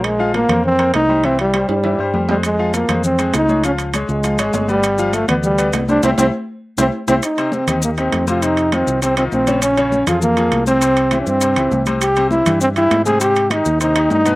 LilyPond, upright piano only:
\new Staff \with { instrumentName = "Upright piano" } { \time 4/4 \key c \phrygian \tempo 4 = 200 <bes bes' c''>8 <f f' f''>4 <bes bes' c''>4 <bes bes' c''>4 <g g' c''>8 | <e e' e''>4 <g g' c''>4 <e e' e''>8 <g g' c''>8 <g g' c''>8 <aes aes' c''>8~ | <aes aes' c''>8 <f f' f''>4 <aes aes' c''>4 <aes aes' c''>4 <aes aes' des''>8 | <f f' f''>4 <aes aes' des''>4 <f f' f''>8 <aes aes' des''>8 <aes aes' des''>8 <b b' d''>8~ |
<b b' d''>8 <f f' f''>4 <b b' d''>4 <b b' d''>4 <g g' c''>8 | <e' g' c''>8 <e' g' c''>8 r4. <e' g' c''>8 r8 <e' g' c''>8 | r8 <c c' c''>4 <ees ees' g'>4 <ees ees' g'>4 <c c' c''>8 | <c c' c''>4 <ees ees' f'>4 <c c' c''>8 <ees ees' f'>4 <des des' des''>8~ |
<des des' des''>8 <des des' des''>4 <f f' aes'>4 <f f' aes'>4 <c c' c''>8 | <c c' c''>4 <e e' g'>4 <c c' c''>8 <e e' g'>4 <c c' c''>8~ | <c c' c''>8 <c c' c''>4 <e e' g'>4 <e e' g'>4 <c c' c''>8 | <c c' c''>4 <ees ees' g'>4 <c c' c''>8 <ees ees' g'>4 <b, b b'>8 | }